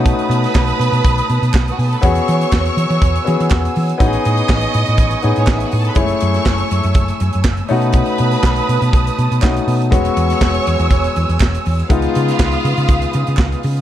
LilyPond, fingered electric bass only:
\new Staff \with { instrumentName = "Fingered electric bass" } { \clef bass \time 4/4 \key b \mixolydian \tempo 4 = 122 b,8 b,8 b,,8 b,16 b,16 b,,8 b,16 b,16 b,,8 b,8 | e,8 e8 e,8 e16 e16 e,8 e16 e16 e,8 e8 | a,,8 a,8 a,,8 a,16 a,16 a,,8 a,16 a,16 a,,8 a,8 | fis,,8 fis,8 fis,,8 fis,16 fis,16 fis,,8 fis,16 fis,16 fis,,8 b,8~ |
b,8 b,8 b,,8 b,16 b,16 b,,8 b,16 b,16 b,,8 b,8 | e,,8 e,8 e,,8 e,16 e,16 e,,8 e,16 e,16 e,,8 e,8 | cis,8 cis8 cis,8 cis16 cis16 cis,8 cis16 cis16 cis,8 cis8 | }